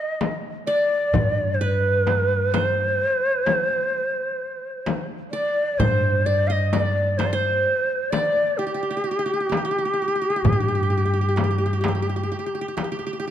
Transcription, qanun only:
Already playing: D#5
0.67 D5
1.61 B4
2.54 C5
5.33 D5
5.80 C5
6.26 D5
6.50 D#5
6.73 D5
7.19 C5
7.33 C5
8.12 D5
8.59 G4
8.67 G4
8.74 G4
8.83 G4
8.91 G4
8.97 G4
9.04 G4
9.11 G4
9.19 G4
9.26 G4
9.34 G4
9.40 G4
9.49 G4
9.57 G4
9.65 G4
9.71 G4
9.78 G4
9.85 G4
9.94 G4
10.02 G4
10.08 G4
10.15 G4
10.22 G4
10.30 G4
10.36 G4
10.44 G4
10.53 G4
10.60 G4
10.68 G4
10.75 G4
10.83 G4
10.90 G4
10.97 G4
11.05 G4
11.14 G4
11.21 G4
11.29 G4
11.36 G4
11.44 G4
11.51 G4
11.58 G4
11.66 G4
11.73 G4
11.81 G4
11.88 G4
11.95 G4
12.02 G4
12.09 G4
12.16 G4
12.23 G4
12.32 G4
12.39 G4
12.46 G4
12.55 G4
12.61 G4
12.68 G4
12.77 G4
12.84 G4
12.92 G4
12.99 G4
13.07 G4
13.13 G4
13.20 G4
13.27 G4

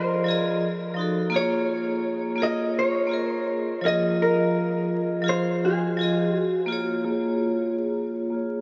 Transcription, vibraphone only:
Already playing: F3 F4 G#4 D5 D#5
0.24 F3 F4
0.28 G#4 D#5
0.94 F3 D#4
0.99 F#4 A4
1.30 A#3 F4
1.34 G#4 C#5
2.36 A#3 F4
2.40 G#4 C#5
3.07 A#3 F4
3.11 G#4 A#4
3.82 F3 F4
3.86 G#4 D#5
5.22 F3 F4
5.26 G#4 F5
5.97 F3 F4
6.01 G#4 D#5
6.66 A#3 F4
6.70 G#4 C#5
7.05 A#3 F4
7.10 G#4 C#5
8.30 A#3 F4
8.34 G#4 C#5

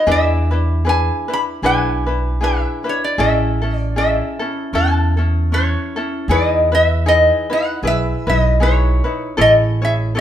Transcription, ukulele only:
0.07 D4 E4 G#4 B4
0.51 D4 E4 B4
0.85 D4 E4 G#4 B4
1.28 D4 E4 B4
1.63 D4 E4 G#4 B4
2.06 D4 E4 B4
2.41 D4 E4 G#4 B4
2.84 D4 E4 B4
3.18 C#4 E4 G#4 A4
3.62 C#4 E4 A4
3.96 C#4 E4 G#4 A4
4.39 C#4 E4 A4
4.73 C#4 E4 A4
5.17 C#4 E4 A4
5.52 C#4 E4 A4
5.96 C#4 E4 A4
6.29 D#4 E4 G#4 B4
6.72 E4 B4
7.06 D#4 E4 G#4 B4
7.50 D#4 E4 B4
7.83 E4 G#4 B4
8.27 D#4 E4 B4
8.60 D#4 E4 G#4 B4
9.04 D#4 E4 B4
9.37 E4 G#4 A4 C#5
9.82 E4 G#4 C#5
10.15 E4 G#4 A4 C#5

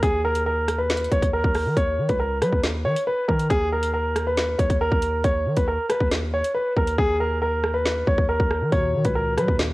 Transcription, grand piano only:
0.03 G#4
0.25 A#4
0.46 A#4
0.78 B4
1.12 C#5
1.33 A#4
1.77 C#5
2.09 B4
2.20 A#4
2.42 B4
2.85 C#5
3.07 B4
3.28 A#4
3.50 G#4
3.72 A#4
3.94 A#4
4.27 B4
4.59 C#5
4.81 A#4
5.24 C#5
5.57 B4
5.68 A#4
5.90 B4
6.33 C#5
6.54 B4
6.77 A#4
6.98 G#4
7.20 A#4
7.42 A#4
7.74 B4
8.08 C#5
8.29 A#4
8.72 C#5
9.05 B4
9.15 A#4
9.38 B4

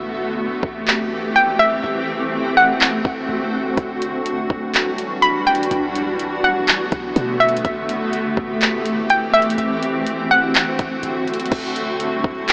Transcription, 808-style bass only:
Already playing: A1
0.63 A1
1.84 D1
3.05 D1
3.29 D1
3.77 E1
4.50 E1
5.71 B1
6.92 B1
7.16 B2
7.65 A1
8.37 A1
9.58 D1
10.79 D1
11.03 D1
11.52 E1
12.24 E1

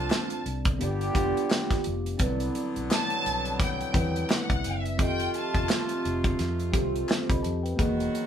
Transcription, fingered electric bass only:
0.46 C2
0.81 G1
1.15 F1
1.71 muted fingered electric bass stroke
1.87 F1
2.20 C2
2.77 B1
3.26 B1
3.95 E2
4.51 C2
4.65 F#1
4.99 F1
5.55 F1
6.05 F1
6.40 F2
6.74 C2
7.11 muted fingered electric bass stroke
7.30 C2
7.45 F2
7.79 E1

